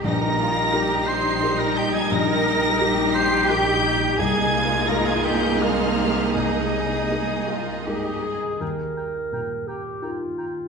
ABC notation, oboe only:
X:1
M:3/4
L:1/16
Q:1/4=86
K:Eb
V:1 name="Oboe"
B6 c3 B G A | B6 c2 G4 | A4 B A G2 F4 | E8- E2 z2 |
g2 g2 g2 g2 g2 g2 |]